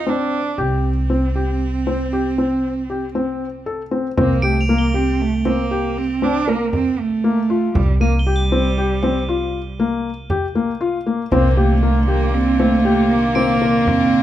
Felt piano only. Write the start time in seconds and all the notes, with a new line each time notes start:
0.07 C4
0.58 G4
1.10 C4
1.36 G4
1.87 C4
2.13 G4
2.38 C4
2.90 G4
3.15 C4
3.66 A4
3.91 C4
4.17 C4
4.43 G4
4.69 A#3
4.94 G4
5.45 C4
5.71 G4
6.22 C4
6.47 A#4
7.24 A#3
7.50 F4
8.01 A#3
8.27 G4
8.52 C4
8.78 G4
9.03 C4
9.29 F4
9.80 A#3
10.30 G4
10.55 A#3
10.81 F4
11.06 A#3
11.32 C4
11.57 G4
11.83 A#3
12.08 G4
12.60 C4
12.85 G4
13.36 C4
13.62 A#4